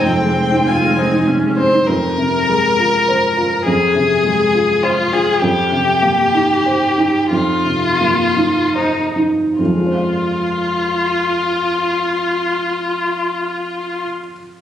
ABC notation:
X:1
M:3/4
L:1/16
Q:1/4=96
K:Fm
V:1 name="Violin"
g4 a4 z2 c2 | B12 | A8 F2 A2 | G12 |
F8 E2 z2 | F12- | F12 |]
V:2 name="Felt piano"
[F,,E] A, c E2 A, c E C, A, c E | F,,2 C,2 A,2 F2 c2 F2 | F,,2 C,2 A,2 F2 c2 F2 | F,,2 C,2 B,2 E2 c2 E2 |
F,,2 C,2 B,2 E2 c2 E2 | [F,,F,A,Fcf]12- | [F,,F,A,Fcf]12 |]
V:3 name="Viola"
C4 F2 E2 D2 C2 | z12 | z12 | z12 |
z12 | z12 | z12 |]
V:4 name="Cello"
C8- C2 z2 | z12 | z12 | z12 |
z12 | z12 | z12 |]
V:5 name="Double bass" clef=bass
F,,,12 | z12 | z12 | z12 |
z12 | z12 | z12 |]